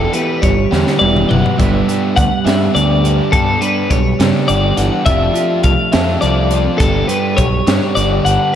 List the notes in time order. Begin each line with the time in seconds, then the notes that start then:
Already playing: E3 B3 E4 G4 A4
0.13 E3 B3 E4 G4 B4, closed hi-hat
0.42 G1 G3 C#5, kick, closed hi-hat
0.71 E2 D3 E3 B3 E4 G4, snare
0.87 snare
0.99 E1 E3 B3 E4 G4 D5, high tom
1.16 mid tom
1.29 F#1 E3 F#3 B3 E4 G4 F#5, mid tom
1.46 floor tom
1.58 G1 G2 G3 B3 D4 G4 E5, kick, closed hi-hat
1.63 B4
1.88 G3 B3 D4 G4 B4, closed hi-hat
2.16 D2 G3 F#5, kick, closed hi-hat
2.45 G2 G3 B3 D4 G4 E5, snare, closed hi-hat
2.74 D2 D3 G3 B3 D4 G4 D5, closed hi-hat
3.03 G3 B3 D4 G4, closed hi-hat
3.32 G2 G3 B3 D4 G4 A4, kick, closed hi-hat
3.61 G3 B3 D4 G4 B4, closed hi-hat
3.90 B1 G3 C#5, kick, closed hi-hat
4.20 G2 C#3 G3 B3 D4 G4, snare, closed hi-hat
4.48 G1 D3 G3 B3 D4 G4 D5, closed hi-hat
4.77 G1 E3 G3 B3 D4 G4 F#5, closed hi-hat
5.05 F1 F3 A3 C4 D4 F4 A4 E5, kick, closed hi-hat
5.09 G4
5.34 F3 C4 F4 G4 A4, closed hi-hat
5.63 C2 A3 F5, kick, closed hi-hat
5.92 F2 F3 B3 C4 F4 A4 E5, snare, closed hi-hat
6.09 D4
6.20 C2 F3 C4 F4 A4 D5, closed hi-hat
6.50 F3 C4 F4 A4, closed hi-hat
6.78 G1 G2 G3 B3 D4 G4 A4, kick, closed hi-hat
7.07 G3 B3 D4 G4 B4, closed hi-hat
7.37 B1 G3 C#5, kick, closed hi-hat
7.67 G2 G3 B3 D4 G4, snare, closed hi-hat
7.95 G1 D3 G3 B3 D4 G4 D5, closed hi-hat
8.25 G1 G3 B3 D4 G4 F#5, closed hi-hat